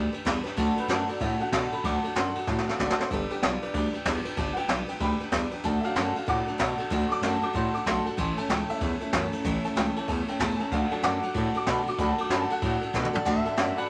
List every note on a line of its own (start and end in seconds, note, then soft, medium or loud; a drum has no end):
0.00 0.13 G3 medium
0.00 0.14 D4 medium
0.00 0.13 G4 medium
0.00 0.11 B4 medium
0.13 0.18 D2 medium
0.13 0.24 D4 medium
0.13 0.25 G4 medium
0.13 0.25 B4 medium
0.13 ride medium
0.25 0.41 E2 medium
0.25 0.45 G3 medium
0.25 0.45 D4 medium
0.25 0.44 G4 medium
0.25 0.42 B4 loud
0.25 kick medium
0.25 snare loud
0.25 ride medium
0.44 0.50 E2 medium
0.44 0.57 D4 medium
0.44 0.57 G4 medium
0.44 0.56 B4 medium
0.44 snare soft
0.44 ride medium
0.57 0.72 D2 loud
0.57 0.77 D3 medium
0.57 1.06 F#3 medium
0.57 0.77 A3 medium
0.57 1.06 A3 soft
0.57 0.77 D4 loud
0.57 1.07 D4 medium
0.57 0.77 F#4 medium
0.57 0.75 A4 loud
0.57 kick loud
0.57 ride medium
0.76 0.81 D2 medium
0.76 0.88 D4 soft
0.76 0.89 F#4 medium
0.76 0.88 A4 medium
0.76 1.08 B4 medium
0.76 ride medium
0.88 1.03 F#2 loud
0.88 1.08 D3 medium
0.88 1.09 A3 medium
0.88 1.09 D4 medium
0.88 1.08 F#4 medium
0.88 1.07 A4 medium
0.88 snare loud
0.88 ride medium
1.08 1.13 F#2 medium
1.08 1.20 D4 soft
1.08 1.21 F#4 soft
1.08 1.20 A4 medium
1.08 1.20 D5 medium
1.08 ride medium
1.20 1.35 A2 loud
1.20 1.40 A3 medium
1.20 1.41 D4 medium
1.20 1.41 F#4 medium
1.20 1.39 A4 medium
1.20 1.40 E5 medium
1.20 kick loud
1.20 ride medium
1.40 1.45 A2 medium
1.40 1.53 D4 soft
1.40 1.53 F#4 medium
1.40 1.52 A4 medium
1.40 1.52 F#5 medium
1.40 ride medium
1.52 1.67 B2 medium
1.52 1.72 D3 medium
1.52 1.73 A3 medium
1.52 1.73 D4 medium
1.52 1.73 F#4 medium
1.52 1.71 A4 medium
1.52 1.72 A5 medium
1.52 kick medium
1.52 snare loud
1.52 ride loud
1.72 1.77 B2 medium
1.72 1.84 D4 soft
1.72 1.85 F#4 medium
1.72 1.84 A4 medium
1.72 1.84 B5 medium
1.72 ride medium
1.84 1.99 D2 loud
1.84 2.04 D3 medium
1.84 2.46 F#3 medium
1.84 2.46 A3 medium
1.84 2.04 A3 medium
1.84 2.46 D4 medium
1.84 2.04 D4 medium
1.84 2.04 F#4 medium
1.84 2.03 A4 medium
1.84 2.04 D6 medium
1.84 kick loud
1.84 ride medium
2.04 2.08 D2 medium
2.04 2.15 D4 soft
2.04 2.16 F#4 medium
2.04 2.16 A4 medium
2.04 ride medium
2.15 2.31 F#2 medium
2.15 2.35 D3 medium
2.15 2.36 A3 medium
2.15 2.36 D4 medium
2.15 2.36 F#4 medium
2.15 2.35 A4 medium
2.15 2.46 C6 loud
2.15 snare loud
2.15 ride medium
2.35 2.41 F#2 medium
2.35 2.49 F#4 medium
2.35 2.48 A4 medium
2.35 ride medium
2.39 2.48 D4 soft
2.47 2.62 A2 medium
2.47 2.65 F#3 soft
2.47 2.65 A3 soft
2.47 2.67 A3 medium
2.47 2.65 D4 soft
2.47 2.68 D4 medium
2.47 2.68 F#4 medium
2.47 2.67 A5 medium
2.47 kick loud
2.47 snare medium
2.51 2.66 A4 medium
2.58 snare medium
2.67 2.72 A2 medium
2.67 2.80 F#4 soft
2.67 2.79 A4 medium
2.67 2.79 F5 medium
2.67 snare medium
2.71 2.80 D4 soft
2.79 2.94 F#1 medium
2.79 2.99 D3 medium
2.79 2.99 A3 medium
2.79 3.00 D4 medium
2.79 3.00 F#4 medium
2.79 2.98 A4 medium
2.79 2.98 D5 loud
2.79 kick medium
2.79 snare medium
2.90 snare loud
2.98 3.03 F#1 medium
2.98 3.12 F#4 medium
2.98 3.11 A4 medium
2.98 3.10 C5 medium
2.98 snare medium
3.02 3.11 D4 soft
3.11 3.25 G1 loud
3.11 3.31 G3 medium
3.11 3.31 D4 medium
3.11 3.31 G4 medium
3.11 3.30 A4 loud
3.11 3.30 B4 medium
3.11 kick loud
3.11 ride medium
3.30 3.35 G1 medium
3.30 3.49 G3 medium
3.30 3.49 B3 soft
3.30 3.50 D4 medium
3.30 3.42 G4 loud
3.30 3.44 G4 medium
3.30 3.43 B4 medium
3.30 ride medium
3.34 3.43 D4 soft
3.42 3.57 B1 loud
3.42 3.62 G3 medium
3.42 3.63 D4 medium
3.42 3.61 F4 loud
3.42 3.63 G4 medium
3.42 3.61 B4 medium
3.42 snare loud
3.42 ride medium
3.62 3.67 B1 medium
3.62 3.72 D4 medium
3.62 3.75 G4 medium
3.62 3.74 B4 medium
3.62 ride medium
3.66 3.74 D4 soft
3.74 3.89 D2 medium
3.74 3.94 G3 medium
3.74 4.05 D4 loud
3.74 3.95 D4 medium
3.74 3.94 G4 medium
3.74 3.92 B4 medium
3.74 kick loud
3.74 ride medium
3.93 3.98 D2 medium
3.93 4.05 D4 soft
3.93 4.06 G4 medium
3.93 4.05 B4 soft
3.93 ride medium
4.05 4.20 E2 loud
4.05 4.25 G3 medium
4.05 4.26 D4 medium
4.05 4.25 G4 medium
4.05 4.24 B4 medium
4.05 kick medium
4.05 snare loud
4.05 ride medium
4.25 4.30 E2 medium
4.25 4.37 D4 medium
4.25 4.38 G4 medium
4.25 4.37 B4 medium
4.25 ride medium
4.37 4.52 G1 loud
4.37 4.57 G3 medium
4.37 5.60 G3 medium
4.37 5.60 B3 soft
4.37 4.57 D4 medium
4.37 5.61 D4 medium
4.37 4.57 G4 medium
4.37 4.55 B4 medium
4.37 4.57 A5 medium
4.37 kick loud
4.37 ride medium
4.53 4.61 G1 medium
4.53 4.69 B4 medium
4.53 4.55 F#5 medium
4.53 ride medium
4.58 4.68 D4 medium
4.58 4.69 G4 soft
4.58 4.88 G5 loud
4.68 4.84 B1 loud
4.68 4.88 G3 medium
4.68 4.89 D4 medium
4.68 4.89 G4 medium
4.68 4.87 B4 medium
4.68 snare loud
4.68 ride medium
4.88 4.94 B1 medium
4.88 5.01 D4 soft
4.88 5.01 G4 medium
4.88 5.00 B4 medium
4.88 4.99 G5 medium
4.88 ride medium
5.00 5.15 D2 loud
5.00 5.20 G3 medium
5.00 5.21 D4 medium
5.00 5.21 G4 medium
5.00 5.19 B4 medium
5.00 5.19 G5 medium
5.00 5.20 B5 loud
5.00 kick loud
5.00 ride medium
5.20 5.25 D2 medium
5.20 5.32 D4 soft
5.20 5.32 G4 soft
5.20 5.32 B4 medium
5.20 ride medium
5.32 5.47 E2 medium
5.32 5.52 G3 medium
5.32 5.52 D4 medium
5.32 5.52 G4 medium
5.32 5.50 B4 medium
5.32 kick medium
5.32 snare loud
5.32 ride medium
5.51 5.56 E2 medium
5.51 5.64 D4 medium
5.51 5.65 G4 medium
5.51 5.64 B4 medium
5.51 ride medium
5.64 5.79 D2 loud
5.64 5.84 D3 medium
5.64 5.84 A3 medium
5.64 5.84 D4 medium
5.64 5.84 F#4 medium
5.64 5.82 A4 medium
5.64 5.84 A5 loud
5.64 kick loud
5.64 ride medium
5.81 5.88 D2 medium
5.81 6.03 F#3 medium
5.81 6.03 A3 medium
5.81 5.95 A4 medium
5.81 5.82 E5 medium
5.81 6.15 F5 loud
5.81 ride medium
5.85 6.03 D4 medium
5.85 5.96 D4 soft
5.85 5.96 F#4 medium
5.96 6.11 F#2 loud
5.96 6.15 D3 medium
5.96 6.16 A3 medium
5.96 6.16 D4 medium
5.96 6.16 F#4 medium
5.96 6.14 A4 medium
5.96 snare loud
5.96 ride medium
6.14 6.19 F#2 medium
6.14 6.28 F#4 soft
6.14 6.27 A4 medium
6.14 6.28 F5 medium
6.14 ride medium
6.19 6.26 D4 medium
6.26 6.42 A2 loud
6.26 6.47 A3 medium
6.26 6.47 D4 medium
6.26 6.47 F#4 medium
6.26 6.45 A4 medium
6.26 6.46 F#5 medium
6.26 6.47 D6 loud
6.26 kick loud
6.26 ride medium
6.46 6.51 A2 medium
6.46 6.58 F#3 soft
6.46 6.58 A3 soft
6.46 6.59 D4 medium
6.46 6.58 D4 soft
6.46 6.59 F#4 medium
6.46 6.59 A4 medium
6.46 ride medium
6.58 6.74 B2 medium
6.58 6.78 D3 medium
6.58 6.79 A3 medium
6.58 6.79 D4 medium
6.58 6.79 F#4 medium
6.58 6.77 A4 medium
6.58 kick medium
6.58 snare loud
6.58 ride medium
6.78 6.83 B2 medium
6.78 6.90 D4 medium
6.78 6.91 F#4 medium
6.78 6.90 A4 medium
6.78 ride medium
6.90 7.06 D2 loud
6.90 7.10 D3 medium
6.90 7.11 A3 medium
6.90 7.11 D4 medium
6.90 7.11 F#4 loud
6.90 7.09 A4 medium
6.90 kick loud
6.90 ride medium
7.07 7.14 D2 medium
7.07 7.29 F#3 medium
7.07 7.30 A3 medium
7.07 7.22 A4 medium
7.07 7.09 C#6 medium
7.11 7.30 D4 medium
7.11 7.22 D4 soft
7.11 7.23 F#4 medium
7.11 7.23 D6 loud
7.11 ride medium
7.21 7.37 F#2 loud
7.21 7.42 D3 medium
7.21 7.43 A3 medium
7.21 7.43 D4 medium
7.21 7.43 F#4 medium
7.21 7.41 A4 medium
7.21 snare medium
7.21 ride medium
7.42 7.47 F#2 medium
7.42 7.54 D4 soft
7.42 7.55 F#4 soft
7.42 7.54 A4 medium
7.42 7.54 D6 medium
7.42 ride medium
7.53 7.69 A2 loud
7.53 7.74 A3 medium
7.53 7.74 D4 medium
7.53 7.74 F#4 medium
7.53 7.72 A4 medium
7.53 7.74 C6 loud
7.53 kick loud
7.53 ride medium
7.73 7.78 A2 medium
7.73 7.86 D4 soft
7.73 7.86 F#4 medium
7.73 7.86 A4 medium
7.73 7.86 D6 medium
7.73 ride medium
7.86 8.01 B1 medium
7.86 8.06 D3 medium
7.86 8.06 A3 medium
7.86 8.06 D4 medium
7.86 8.06 F#4 medium
7.86 8.04 A4 loud
7.86 8.05 C6 loud
7.86 kick medium
7.86 snare loud
7.86 ride medium
8.05 8.10 B1 medium
8.05 8.18 D4 soft
8.05 8.18 F#4 medium
8.05 8.17 A4 medium
8.05 8.18 A5 medium
8.05 ride medium
8.17 8.33 A1 loud
8.17 8.37 A2 medium
8.17 8.80 E3 medium
8.17 8.38 E3 medium
8.17 8.80 A3 soft
8.17 8.38 A3 medium
8.17 8.80 C#4 medium
8.17 8.38 C#4 medium
8.17 8.37 E4 medium
8.17 8.36 A4 medium
8.17 8.37 C6 medium
8.17 kick loud
8.17 ride medium
8.36 8.41 A1 medium
8.36 8.50 C#4 soft
8.36 8.50 E4 medium
8.36 8.49 A4 medium
8.36 8.49 A5 medium
8.36 ride medium
8.41 8.49 A3 soft
8.49 8.64 C#2 loud
8.49 8.69 A2 medium
8.49 8.69 E3 medium
8.49 8.70 A3 medium
8.49 8.70 C#4 medium
8.49 8.69 E4 medium
8.49 8.68 A4 medium
8.49 8.69 G5 loud
8.49 snare medium
8.49 ride medium
8.69 8.74 C#2 medium
8.69 8.79 A3 soft
8.69 8.81 C#4 soft
8.69 8.82 E4 medium
8.69 8.81 A4 medium
8.69 9.31 E5 loud
8.69 ride medium
8.81 8.96 E2 loud
8.81 8.99 E3 soft
8.81 9.01 A3 medium
8.81 8.99 A3 soft
8.81 9.01 C#4 medium
8.81 8.99 C#4 medium
8.81 9.01 E4 medium
8.81 8.99 A4 medium
8.81 kick loud
8.81 ride medium
9.01 9.06 E2 medium
9.01 9.13 A3 soft
9.01 9.14 C#4 soft
9.01 9.13 E4 medium
9.01 9.13 A4 medium
9.01 ride medium
9.13 9.28 F#2 loud
9.13 9.33 A2 medium
9.13 9.33 E3 medium
9.13 9.33 A3 medium
9.13 9.33 C#4 loud
9.13 9.33 E4 medium
9.13 9.31 A4 medium
9.13 kick medium
9.13 snare loud
9.13 ride medium
9.32 9.37 F#2 medium
9.32 9.44 A3 medium
9.32 9.45 C#4 medium
9.32 9.45 E4 medium
9.32 9.44 A4 medium
9.32 ride medium
9.44 9.59 A1 loud
9.44 9.64 A2 medium
9.44 9.65 E3 medium
9.44 9.65 A3 medium
9.44 9.65 C#4 loud
9.44 9.64 E4 loud
9.44 9.63 A4 medium
9.44 kick loud
9.44 ride medium
9.63 9.68 A1 medium
9.63 9.76 A3 medium
9.63 9.76 C#4 medium
9.63 9.77 E4 soft
9.63 9.76 A4 medium
9.63 9.76 A5 loud
9.63 ride medium
9.76 9.91 C#2 loud
9.76 9.96 A2 medium
9.76 9.96 E3 medium
9.76 9.96 A3 medium
9.76 9.97 C#4 medium
9.76 9.96 E4 medium
9.76 9.95 A4 medium
9.76 9.96 G5 loud
9.76 snare loud
9.76 ride medium
9.96 10.01 C#2 medium
9.96 10.38 E3 medium
9.96 10.38 A3 medium
9.96 10.38 C#4 medium
9.96 10.08 C#4 medium
9.96 10.09 E4 soft
9.96 10.08 A4 medium
9.96 10.07 A5 medium
9.96 ride medium
10.00 10.07 A3 soft
10.08 10.23 E2 loud
10.08 10.28 A3 medium
10.08 10.28 C#4 medium
10.08 10.28 E4 medium
10.08 10.26 A4 medium
10.08 10.28 A5 medium
10.08 kick loud
10.08 ride medium
10.28 10.32 E2 medium
10.28 10.40 A3 soft
10.28 10.40 C#4 soft
10.28 10.40 E4 medium
10.28 10.40 A4 medium
10.28 10.40 G5 medium
10.28 ride medium
10.40 10.54 E2 loud
10.40 10.59 A2 medium
10.40 10.60 E3 medium
10.40 10.60 A3 medium
10.40 10.60 C#4 medium
10.40 10.59 E4 medium
10.40 10.58 A4 loud
10.40 10.59 A5 loud
10.40 kick medium
10.40 snare loud
10.40 ride loud
10.56 10.64 E2 medium
10.56 10.71 A4 medium
10.56 10.58 G#5 medium
10.56 ride medium
10.60 10.71 A3 soft
10.60 10.73 C#4 soft
10.60 10.72 E4 medium
10.60 10.72 A5 loud
10.71 10.86 D2 loud
10.71 10.91 D3 medium
10.71 10.92 A3 medium
10.71 10.92 D4 medium
10.71 10.91 F#4 medium
10.71 10.89 A4 medium
10.71 10.91 F5 loud
10.71 kick loud
10.71 ride medium
10.91 10.96 D2 medium
10.91 11.96 F#3 medium
10.91 11.97 A3 medium
10.91 11.98 D4 medium
10.91 11.03 D4 soft
10.91 11.04 F#4 medium
10.91 11.03 A4 medium
10.91 11.03 A5 loud
10.91 ride medium
11.03 11.18 F#2 loud
11.03 11.23 D3 medium
11.03 11.23 A3 medium
11.03 11.23 D4 medium
11.03 11.24 F#4 medium
11.03 11.22 A4 medium
11.03 11.33 F#5 loud
11.03 11.34 D6 loud
11.03 snare loud
11.03 ride medium
11.23 11.28 F#2 medium
11.23 11.34 D4 soft
11.23 11.36 F#4 medium
11.23 11.35 A4 medium
11.23 ride medium
11.34 11.50 A2 loud
11.34 11.54 A3 medium
11.34 11.55 D4 medium
11.34 11.55 F#4 medium
11.34 11.53 A4 medium
11.34 kick loud
11.34 ride medium
11.54 11.59 A2 medium
11.54 11.68 F#4 soft
11.54 11.67 A4 medium
11.54 11.67 D6 loud
11.54 ride medium
11.58 11.67 D4 soft
11.66 11.81 B2 loud
11.66 11.87 D3 medium
11.66 11.87 A3 medium
11.66 11.87 D4 medium
11.66 11.87 F#4 medium
11.66 11.86 A4 medium
11.66 11.78 B5 loud
11.66 kick medium
11.66 snare loud
11.66 ride medium
11.78 11.88 A5 medium
11.87 11.91 B2 medium
11.87 11.99 D4 medium
11.87 12.00 F#4 medium
11.87 11.99 A4 medium
11.87 11.99 D6 medium
11.87 ride medium
11.98 12.13 D2 loud
11.98 12.18 D3 medium
11.98 12.21 F#3 medium
11.98 12.22 A3 medium
11.98 12.19 A3 medium
11.98 12.22 D4 medium
11.98 12.19 D4 medium
11.98 12.19 F#4 medium
11.98 12.17 A4 medium
11.98 12.09 B5 loud
11.98 kick loud
11.98 ride medium
12.10 12.20 A5 medium
12.18 12.23 D2 medium
12.18 12.31 F#4 medium
12.18 12.30 A4 medium
12.18 12.30 D6 medium
12.18 ride medium
12.22 12.31 D4 soft
12.29 12.45 F#2 loud
12.29 12.50 D3 medium
12.29 12.50 A3 medium
12.29 12.51 D4 medium
12.29 12.50 F#4 medium
12.29 12.49 A4 medium
12.29 12.41 B5 loud
12.29 snare loud
12.29 ride medium
12.41 12.51 A5 loud
12.49 12.54 F#2 medium
12.49 12.63 F#4 medium
12.49 12.62 A4 medium
12.49 12.82 F#5 loud
12.49 ride medium
12.53 12.62 D4 soft
12.62 12.77 A2 loud
12.62 12.82 A3 medium
12.62 12.82 D4 medium
12.62 12.82 F#4 medium
12.62 12.80 A4 medium
12.62 kick loud
12.62 ride medium
12.81 12.87 A2 medium
12.81 12.94 D4 soft
12.81 12.94 F#4 medium
12.81 12.94 A4 medium
12.81 ride medium
12.94 13.09 B2 loud
12.94 13.14 D3 medium
12.94 13.14 A3 medium
12.94 13.14 D4 medium
12.94 13.14 F#4 loud
12.94 13.12 A4 loud
12.94 kick medium
12.94 snare medium
13.05 mid tom medium
13.13 13.19 B2 medium
13.13 13.26 D4 medium
13.13 13.26 F#4 medium
13.13 13.26 A4 medium
13.13 13.27 D5 medium
13.13 floor tom loud
13.25 13.41 D2 loud
13.25 13.45 D3 medium
13.25 13.46 A3 medium
13.25 13.46 D4 medium
13.25 13.46 F#4 medium
13.25 13.44 A4 medium
13.25 13.37 D5 medium
13.25 13.78 E5 medium
13.25 13.37 F#5 medium
13.25 13.38 A5 medium
13.25 kick loud
13.25 crash loud
13.45 13.50 D2 medium
13.45 13.57 D4 medium
13.45 13.57 F#4 soft
13.45 13.57 A4 medium
13.45 13.53 D5 medium
13.45 13.53 F#5 medium
13.45 13.53 A5 medium
13.45 ride medium
13.57 13.73 F#2 medium
13.57 13.77 D3 medium
13.57 13.77 A3 medium
13.57 13.78 D4 medium
13.57 13.77 F#4 medium
13.57 13.75 A4 medium
13.57 13.69 D5 medium
13.57 13.69 F#5 medium
13.57 13.70 A5 medium
13.57 snare loud
13.57 ride medium
13.76 13.82 F#2 medium
13.76 13.89 D4 soft
13.76 13.89 F#4 medium
13.76 13.89 A4 medium
13.76 13.84 D5 loud
13.76 13.84 F#5 medium
13.76 13.89 F#5 loud
13.76 13.84 B5 loud
13.76 ride medium